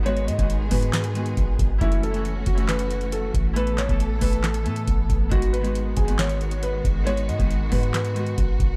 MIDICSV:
0, 0, Header, 1, 6, 480
1, 0, Start_track
1, 0, Tempo, 437956
1, 65, Time_signature, 4, 2, 24, 8
1, 9608, End_track
2, 0, Start_track
2, 0, Title_t, "Grand piano"
2, 0, Program_c, 0, 0
2, 65, Note_on_c, 0, 73, 110
2, 281, Note_off_c, 0, 73, 0
2, 303, Note_on_c, 0, 75, 78
2, 521, Note_off_c, 0, 75, 0
2, 783, Note_on_c, 0, 71, 85
2, 1001, Note_off_c, 0, 71, 0
2, 1028, Note_on_c, 0, 71, 78
2, 1943, Note_off_c, 0, 71, 0
2, 1986, Note_on_c, 0, 64, 103
2, 2202, Note_off_c, 0, 64, 0
2, 2229, Note_on_c, 0, 69, 89
2, 2444, Note_off_c, 0, 69, 0
2, 2705, Note_on_c, 0, 66, 75
2, 2922, Note_off_c, 0, 66, 0
2, 2940, Note_on_c, 0, 71, 79
2, 3393, Note_off_c, 0, 71, 0
2, 3428, Note_on_c, 0, 69, 80
2, 3643, Note_off_c, 0, 69, 0
2, 3907, Note_on_c, 0, 71, 96
2, 4123, Note_off_c, 0, 71, 0
2, 4146, Note_on_c, 0, 73, 80
2, 4362, Note_off_c, 0, 73, 0
2, 4620, Note_on_c, 0, 71, 76
2, 4839, Note_off_c, 0, 71, 0
2, 4864, Note_on_c, 0, 69, 80
2, 5781, Note_off_c, 0, 69, 0
2, 5824, Note_on_c, 0, 66, 105
2, 6041, Note_off_c, 0, 66, 0
2, 6062, Note_on_c, 0, 71, 83
2, 6280, Note_off_c, 0, 71, 0
2, 6542, Note_on_c, 0, 68, 80
2, 6760, Note_off_c, 0, 68, 0
2, 6789, Note_on_c, 0, 73, 88
2, 7238, Note_off_c, 0, 73, 0
2, 7268, Note_on_c, 0, 71, 81
2, 7483, Note_off_c, 0, 71, 0
2, 7745, Note_on_c, 0, 73, 107
2, 7962, Note_off_c, 0, 73, 0
2, 7984, Note_on_c, 0, 75, 74
2, 8201, Note_off_c, 0, 75, 0
2, 8463, Note_on_c, 0, 71, 86
2, 8681, Note_off_c, 0, 71, 0
2, 8707, Note_on_c, 0, 71, 78
2, 9608, Note_off_c, 0, 71, 0
2, 9608, End_track
3, 0, Start_track
3, 0, Title_t, "String section"
3, 0, Program_c, 1, 48
3, 0, Note_on_c, 1, 51, 79
3, 0, Note_on_c, 1, 56, 75
3, 0, Note_on_c, 1, 59, 74
3, 65, Note_on_c, 1, 68, 92
3, 1946, Note_off_c, 1, 51, 0
3, 1946, Note_off_c, 1, 56, 0
3, 1946, Note_off_c, 1, 59, 0
3, 1966, Note_off_c, 1, 68, 0
3, 1985, Note_on_c, 1, 52, 83
3, 1985, Note_on_c, 1, 57, 77
3, 1985, Note_on_c, 1, 61, 75
3, 1985, Note_on_c, 1, 66, 90
3, 3886, Note_off_c, 1, 61, 0
3, 3886, Note_off_c, 1, 66, 0
3, 3904, Note_on_c, 1, 69, 92
3, 3905, Note_on_c, 1, 59, 75
3, 5787, Note_off_c, 1, 52, 0
3, 5787, Note_off_c, 1, 57, 0
3, 5805, Note_off_c, 1, 69, 0
3, 5825, Note_on_c, 1, 51, 81
3, 5825, Note_on_c, 1, 56, 75
3, 5825, Note_on_c, 1, 66, 93
3, 9608, Note_off_c, 1, 51, 0
3, 9608, Note_off_c, 1, 56, 0
3, 9608, Note_off_c, 1, 59, 0
3, 9608, Note_off_c, 1, 66, 0
3, 9608, End_track
4, 0, Start_track
4, 0, Title_t, "Harp"
4, 0, Program_c, 2, 46
4, 31, Note_on_c, 2, 51, 97
4, 51, Note_on_c, 2, 56, 92
4, 71, Note_on_c, 2, 59, 89
4, 91, Note_on_c, 2, 66, 119
4, 330, Note_off_c, 2, 59, 0
4, 341, Note_off_c, 2, 66, 0
4, 391, Note_off_c, 2, 51, 0
4, 404, Note_on_c, 2, 51, 81
4, 411, Note_off_c, 2, 56, 0
4, 424, Note_on_c, 2, 56, 74
4, 444, Note_on_c, 2, 59, 73
4, 464, Note_on_c, 2, 66, 83
4, 697, Note_off_c, 2, 59, 0
4, 707, Note_off_c, 2, 66, 0
4, 736, Note_off_c, 2, 51, 0
4, 749, Note_on_c, 2, 51, 68
4, 755, Note_off_c, 2, 56, 0
4, 769, Note_on_c, 2, 56, 71
4, 788, Note_on_c, 2, 59, 73
4, 808, Note_on_c, 2, 66, 80
4, 1137, Note_off_c, 2, 59, 0
4, 1147, Note_off_c, 2, 66, 0
4, 1226, Note_off_c, 2, 51, 0
4, 1239, Note_on_c, 2, 51, 72
4, 1245, Note_off_c, 2, 56, 0
4, 1259, Note_on_c, 2, 56, 62
4, 1279, Note_on_c, 2, 59, 66
4, 1298, Note_on_c, 2, 66, 83
4, 1953, Note_on_c, 2, 52, 94
4, 1973, Note_on_c, 2, 57, 92
4, 1993, Note_on_c, 2, 61, 90
4, 2009, Note_off_c, 2, 66, 0
4, 2013, Note_on_c, 2, 66, 103
4, 2039, Note_off_c, 2, 51, 0
4, 2039, Note_off_c, 2, 56, 0
4, 2242, Note_off_c, 2, 57, 0
4, 2251, Note_off_c, 2, 61, 0
4, 2261, Note_off_c, 2, 66, 0
4, 2298, Note_off_c, 2, 52, 0
4, 2311, Note_on_c, 2, 52, 78
4, 2331, Note_on_c, 2, 57, 67
4, 2350, Note_on_c, 2, 61, 71
4, 2370, Note_on_c, 2, 66, 93
4, 2688, Note_off_c, 2, 57, 0
4, 2698, Note_off_c, 2, 61, 0
4, 2708, Note_off_c, 2, 66, 0
4, 2777, Note_off_c, 2, 52, 0
4, 2790, Note_on_c, 2, 52, 73
4, 2810, Note_on_c, 2, 57, 61
4, 2830, Note_on_c, 2, 61, 65
4, 2850, Note_on_c, 2, 66, 82
4, 3859, Note_off_c, 2, 52, 0
4, 3872, Note_on_c, 2, 52, 97
4, 3887, Note_off_c, 2, 57, 0
4, 3892, Note_on_c, 2, 57, 83
4, 3907, Note_off_c, 2, 59, 0
4, 3912, Note_on_c, 2, 59, 84
4, 3931, Note_on_c, 2, 69, 107
4, 4161, Note_off_c, 2, 57, 0
4, 4171, Note_off_c, 2, 59, 0
4, 4181, Note_off_c, 2, 69, 0
4, 4217, Note_off_c, 2, 52, 0
4, 4230, Note_on_c, 2, 52, 74
4, 4250, Note_on_c, 2, 57, 71
4, 4270, Note_on_c, 2, 59, 70
4, 4290, Note_on_c, 2, 69, 89
4, 4520, Note_off_c, 2, 57, 0
4, 4530, Note_off_c, 2, 59, 0
4, 4540, Note_off_c, 2, 69, 0
4, 4573, Note_off_c, 2, 52, 0
4, 4586, Note_on_c, 2, 52, 78
4, 4606, Note_on_c, 2, 57, 71
4, 4626, Note_on_c, 2, 59, 74
4, 4646, Note_on_c, 2, 69, 87
4, 4966, Note_off_c, 2, 57, 0
4, 4975, Note_off_c, 2, 59, 0
4, 4985, Note_off_c, 2, 69, 0
4, 5069, Note_off_c, 2, 52, 0
4, 5082, Note_on_c, 2, 52, 69
4, 5102, Note_on_c, 2, 57, 63
4, 5122, Note_on_c, 2, 59, 67
4, 5142, Note_on_c, 2, 69, 76
4, 5521, Note_off_c, 2, 66, 0
4, 5801, Note_on_c, 2, 51, 91
4, 5821, Note_on_c, 2, 56, 88
4, 5836, Note_off_c, 2, 59, 0
4, 5841, Note_on_c, 2, 59, 88
4, 5861, Note_on_c, 2, 66, 100
4, 5879, Note_off_c, 2, 52, 0
4, 5887, Note_off_c, 2, 57, 0
4, 5887, Note_off_c, 2, 69, 0
4, 6006, Note_off_c, 2, 61, 0
4, 6095, Note_off_c, 2, 59, 0
4, 6105, Note_off_c, 2, 66, 0
4, 6138, Note_off_c, 2, 51, 0
4, 6151, Note_on_c, 2, 51, 80
4, 6158, Note_off_c, 2, 56, 0
4, 6171, Note_on_c, 2, 56, 73
4, 6191, Note_on_c, 2, 59, 70
4, 6211, Note_on_c, 2, 66, 85
4, 6538, Note_off_c, 2, 59, 0
4, 6548, Note_off_c, 2, 66, 0
4, 6614, Note_off_c, 2, 51, 0
4, 6627, Note_on_c, 2, 51, 71
4, 6634, Note_off_c, 2, 56, 0
4, 6647, Note_on_c, 2, 56, 62
4, 6667, Note_on_c, 2, 59, 63
4, 6687, Note_on_c, 2, 66, 81
4, 7699, Note_off_c, 2, 51, 0
4, 7712, Note_on_c, 2, 51, 94
4, 7719, Note_off_c, 2, 56, 0
4, 7732, Note_on_c, 2, 56, 98
4, 7747, Note_off_c, 2, 59, 0
4, 7752, Note_on_c, 2, 59, 87
4, 7767, Note_off_c, 2, 66, 0
4, 7772, Note_on_c, 2, 66, 118
4, 8011, Note_off_c, 2, 59, 0
4, 8021, Note_off_c, 2, 66, 0
4, 8071, Note_off_c, 2, 51, 0
4, 8084, Note_on_c, 2, 51, 78
4, 8091, Note_off_c, 2, 56, 0
4, 8104, Note_on_c, 2, 56, 71
4, 8124, Note_on_c, 2, 59, 70
4, 8144, Note_on_c, 2, 66, 86
4, 8377, Note_off_c, 2, 59, 0
4, 8387, Note_off_c, 2, 66, 0
4, 8415, Note_off_c, 2, 51, 0
4, 8428, Note_on_c, 2, 51, 71
4, 8435, Note_off_c, 2, 56, 0
4, 8448, Note_on_c, 2, 56, 70
4, 8468, Note_on_c, 2, 59, 69
4, 8488, Note_on_c, 2, 66, 82
4, 8817, Note_off_c, 2, 59, 0
4, 8827, Note_off_c, 2, 66, 0
4, 8905, Note_off_c, 2, 51, 0
4, 8918, Note_on_c, 2, 51, 71
4, 8925, Note_off_c, 2, 56, 0
4, 8938, Note_on_c, 2, 56, 59
4, 8958, Note_on_c, 2, 59, 68
4, 8978, Note_on_c, 2, 66, 81
4, 9608, Note_off_c, 2, 51, 0
4, 9608, Note_off_c, 2, 56, 0
4, 9608, Note_off_c, 2, 59, 0
4, 9608, Note_off_c, 2, 66, 0
4, 9608, End_track
5, 0, Start_track
5, 0, Title_t, "808-style bass"
5, 0, Program_c, 3, 38
5, 0, Note_on_c, 3, 32, 109
5, 304, Note_on_c, 3, 44, 97
5, 321, Note_off_c, 3, 32, 0
5, 419, Note_off_c, 3, 44, 0
5, 425, Note_on_c, 3, 32, 100
5, 770, Note_off_c, 3, 32, 0
5, 785, Note_on_c, 3, 44, 108
5, 1476, Note_off_c, 3, 44, 0
5, 1505, Note_on_c, 3, 32, 106
5, 1735, Note_off_c, 3, 32, 0
5, 1744, Note_on_c, 3, 32, 109
5, 1975, Note_off_c, 3, 32, 0
5, 1985, Note_on_c, 3, 30, 112
5, 2676, Note_off_c, 3, 30, 0
5, 2704, Note_on_c, 3, 30, 108
5, 3626, Note_off_c, 3, 30, 0
5, 3664, Note_on_c, 3, 33, 105
5, 4240, Note_off_c, 3, 33, 0
5, 4265, Note_on_c, 3, 33, 99
5, 4610, Note_off_c, 3, 33, 0
5, 4624, Note_on_c, 3, 33, 103
5, 5105, Note_on_c, 3, 45, 102
5, 5121, Note_off_c, 3, 33, 0
5, 5333, Note_off_c, 3, 45, 0
5, 5345, Note_on_c, 3, 33, 108
5, 5575, Note_off_c, 3, 33, 0
5, 5584, Note_on_c, 3, 33, 104
5, 5815, Note_off_c, 3, 33, 0
5, 5825, Note_on_c, 3, 32, 112
5, 6516, Note_off_c, 3, 32, 0
5, 6545, Note_on_c, 3, 32, 107
5, 7466, Note_off_c, 3, 32, 0
5, 7504, Note_on_c, 3, 32, 109
5, 7985, Note_on_c, 3, 44, 100
5, 8001, Note_off_c, 3, 32, 0
5, 8099, Note_off_c, 3, 44, 0
5, 8105, Note_on_c, 3, 32, 100
5, 8450, Note_off_c, 3, 32, 0
5, 8464, Note_on_c, 3, 44, 106
5, 9156, Note_off_c, 3, 44, 0
5, 9184, Note_on_c, 3, 32, 106
5, 9415, Note_off_c, 3, 32, 0
5, 9423, Note_on_c, 3, 32, 107
5, 9608, Note_off_c, 3, 32, 0
5, 9608, End_track
6, 0, Start_track
6, 0, Title_t, "Drums"
6, 65, Note_on_c, 9, 42, 78
6, 175, Note_off_c, 9, 42, 0
6, 182, Note_on_c, 9, 42, 58
6, 292, Note_off_c, 9, 42, 0
6, 309, Note_on_c, 9, 42, 75
6, 419, Note_off_c, 9, 42, 0
6, 425, Note_on_c, 9, 36, 97
6, 427, Note_on_c, 9, 42, 59
6, 534, Note_off_c, 9, 36, 0
6, 536, Note_off_c, 9, 42, 0
6, 546, Note_on_c, 9, 42, 69
6, 656, Note_off_c, 9, 42, 0
6, 778, Note_on_c, 9, 46, 75
6, 785, Note_on_c, 9, 36, 95
6, 888, Note_off_c, 9, 46, 0
6, 894, Note_off_c, 9, 36, 0
6, 904, Note_on_c, 9, 42, 57
6, 1013, Note_off_c, 9, 42, 0
6, 1024, Note_on_c, 9, 38, 125
6, 1026, Note_on_c, 9, 39, 99
6, 1028, Note_on_c, 9, 42, 83
6, 1134, Note_off_c, 9, 38, 0
6, 1136, Note_off_c, 9, 39, 0
6, 1138, Note_off_c, 9, 42, 0
6, 1138, Note_on_c, 9, 42, 76
6, 1247, Note_off_c, 9, 42, 0
6, 1264, Note_on_c, 9, 42, 61
6, 1374, Note_off_c, 9, 42, 0
6, 1379, Note_on_c, 9, 42, 54
6, 1488, Note_off_c, 9, 42, 0
6, 1503, Note_on_c, 9, 42, 77
6, 1505, Note_on_c, 9, 36, 101
6, 1613, Note_off_c, 9, 42, 0
6, 1614, Note_off_c, 9, 36, 0
6, 1744, Note_on_c, 9, 36, 92
6, 1747, Note_on_c, 9, 42, 81
6, 1853, Note_off_c, 9, 36, 0
6, 1857, Note_off_c, 9, 42, 0
6, 1985, Note_on_c, 9, 36, 119
6, 1985, Note_on_c, 9, 42, 78
6, 2095, Note_off_c, 9, 36, 0
6, 2095, Note_off_c, 9, 42, 0
6, 2102, Note_on_c, 9, 42, 59
6, 2212, Note_off_c, 9, 42, 0
6, 2229, Note_on_c, 9, 42, 72
6, 2339, Note_off_c, 9, 42, 0
6, 2347, Note_on_c, 9, 42, 60
6, 2457, Note_off_c, 9, 42, 0
6, 2466, Note_on_c, 9, 42, 68
6, 2576, Note_off_c, 9, 42, 0
6, 2698, Note_on_c, 9, 42, 76
6, 2704, Note_on_c, 9, 36, 100
6, 2808, Note_off_c, 9, 42, 0
6, 2814, Note_off_c, 9, 36, 0
6, 2824, Note_on_c, 9, 42, 57
6, 2934, Note_off_c, 9, 42, 0
6, 2945, Note_on_c, 9, 38, 123
6, 2947, Note_on_c, 9, 39, 97
6, 2948, Note_on_c, 9, 42, 88
6, 3054, Note_off_c, 9, 38, 0
6, 3056, Note_off_c, 9, 39, 0
6, 3058, Note_off_c, 9, 42, 0
6, 3058, Note_on_c, 9, 42, 76
6, 3168, Note_off_c, 9, 42, 0
6, 3185, Note_on_c, 9, 42, 60
6, 3294, Note_off_c, 9, 42, 0
6, 3299, Note_on_c, 9, 42, 56
6, 3409, Note_off_c, 9, 42, 0
6, 3424, Note_on_c, 9, 42, 82
6, 3533, Note_off_c, 9, 42, 0
6, 3664, Note_on_c, 9, 36, 98
6, 3667, Note_on_c, 9, 42, 82
6, 3773, Note_off_c, 9, 36, 0
6, 3777, Note_off_c, 9, 42, 0
6, 3905, Note_on_c, 9, 42, 78
6, 4015, Note_off_c, 9, 42, 0
6, 4022, Note_on_c, 9, 42, 60
6, 4132, Note_off_c, 9, 42, 0
6, 4145, Note_on_c, 9, 38, 89
6, 4147, Note_on_c, 9, 39, 70
6, 4149, Note_on_c, 9, 42, 76
6, 4254, Note_off_c, 9, 38, 0
6, 4257, Note_off_c, 9, 39, 0
6, 4259, Note_off_c, 9, 42, 0
6, 4265, Note_on_c, 9, 36, 102
6, 4267, Note_on_c, 9, 42, 59
6, 4374, Note_off_c, 9, 36, 0
6, 4376, Note_off_c, 9, 42, 0
6, 4386, Note_on_c, 9, 42, 70
6, 4495, Note_off_c, 9, 42, 0
6, 4618, Note_on_c, 9, 46, 74
6, 4624, Note_on_c, 9, 36, 96
6, 4728, Note_off_c, 9, 46, 0
6, 4734, Note_off_c, 9, 36, 0
6, 4744, Note_on_c, 9, 42, 56
6, 4854, Note_off_c, 9, 42, 0
6, 4864, Note_on_c, 9, 38, 118
6, 4866, Note_on_c, 9, 39, 97
6, 4868, Note_on_c, 9, 42, 89
6, 4974, Note_off_c, 9, 38, 0
6, 4976, Note_off_c, 9, 39, 0
6, 4978, Note_off_c, 9, 42, 0
6, 4978, Note_on_c, 9, 42, 79
6, 5088, Note_off_c, 9, 42, 0
6, 5104, Note_on_c, 9, 42, 64
6, 5214, Note_off_c, 9, 42, 0
6, 5219, Note_on_c, 9, 42, 56
6, 5328, Note_off_c, 9, 42, 0
6, 5343, Note_on_c, 9, 42, 81
6, 5345, Note_on_c, 9, 36, 101
6, 5453, Note_off_c, 9, 42, 0
6, 5454, Note_off_c, 9, 36, 0
6, 5584, Note_on_c, 9, 36, 96
6, 5587, Note_on_c, 9, 42, 81
6, 5693, Note_off_c, 9, 36, 0
6, 5696, Note_off_c, 9, 42, 0
6, 5825, Note_on_c, 9, 36, 120
6, 5825, Note_on_c, 9, 42, 77
6, 5935, Note_off_c, 9, 36, 0
6, 5935, Note_off_c, 9, 42, 0
6, 5942, Note_on_c, 9, 42, 60
6, 6052, Note_off_c, 9, 42, 0
6, 6069, Note_on_c, 9, 42, 72
6, 6179, Note_off_c, 9, 42, 0
6, 6187, Note_on_c, 9, 42, 59
6, 6297, Note_off_c, 9, 42, 0
6, 6306, Note_on_c, 9, 42, 70
6, 6416, Note_off_c, 9, 42, 0
6, 6538, Note_on_c, 9, 42, 75
6, 6545, Note_on_c, 9, 36, 94
6, 6648, Note_off_c, 9, 42, 0
6, 6654, Note_off_c, 9, 36, 0
6, 6664, Note_on_c, 9, 42, 58
6, 6774, Note_off_c, 9, 42, 0
6, 6785, Note_on_c, 9, 38, 120
6, 6787, Note_on_c, 9, 39, 99
6, 6788, Note_on_c, 9, 42, 85
6, 6894, Note_off_c, 9, 38, 0
6, 6896, Note_off_c, 9, 39, 0
6, 6898, Note_off_c, 9, 42, 0
6, 6898, Note_on_c, 9, 42, 77
6, 7008, Note_off_c, 9, 42, 0
6, 7024, Note_on_c, 9, 42, 63
6, 7134, Note_off_c, 9, 42, 0
6, 7139, Note_on_c, 9, 42, 58
6, 7248, Note_off_c, 9, 42, 0
6, 7264, Note_on_c, 9, 42, 77
6, 7373, Note_off_c, 9, 42, 0
6, 7504, Note_on_c, 9, 36, 91
6, 7507, Note_on_c, 9, 42, 83
6, 7613, Note_off_c, 9, 36, 0
6, 7617, Note_off_c, 9, 42, 0
6, 7745, Note_on_c, 9, 42, 79
6, 7855, Note_off_c, 9, 42, 0
6, 7862, Note_on_c, 9, 42, 59
6, 7972, Note_off_c, 9, 42, 0
6, 7989, Note_on_c, 9, 42, 73
6, 8099, Note_off_c, 9, 42, 0
6, 8105, Note_on_c, 9, 36, 99
6, 8107, Note_on_c, 9, 42, 61
6, 8214, Note_off_c, 9, 36, 0
6, 8216, Note_off_c, 9, 42, 0
6, 8226, Note_on_c, 9, 42, 69
6, 8336, Note_off_c, 9, 42, 0
6, 8458, Note_on_c, 9, 46, 74
6, 8464, Note_on_c, 9, 36, 99
6, 8568, Note_off_c, 9, 46, 0
6, 8574, Note_off_c, 9, 36, 0
6, 8584, Note_on_c, 9, 42, 57
6, 8693, Note_off_c, 9, 42, 0
6, 8704, Note_on_c, 9, 38, 124
6, 8706, Note_on_c, 9, 39, 94
6, 8708, Note_on_c, 9, 42, 88
6, 8814, Note_off_c, 9, 38, 0
6, 8816, Note_off_c, 9, 39, 0
6, 8818, Note_off_c, 9, 42, 0
6, 8818, Note_on_c, 9, 42, 77
6, 8928, Note_off_c, 9, 42, 0
6, 8944, Note_on_c, 9, 42, 63
6, 9054, Note_off_c, 9, 42, 0
6, 9059, Note_on_c, 9, 42, 54
6, 9168, Note_off_c, 9, 42, 0
6, 9183, Note_on_c, 9, 42, 78
6, 9184, Note_on_c, 9, 36, 102
6, 9293, Note_off_c, 9, 42, 0
6, 9294, Note_off_c, 9, 36, 0
6, 9423, Note_on_c, 9, 36, 96
6, 9426, Note_on_c, 9, 42, 82
6, 9533, Note_off_c, 9, 36, 0
6, 9536, Note_off_c, 9, 42, 0
6, 9608, End_track
0, 0, End_of_file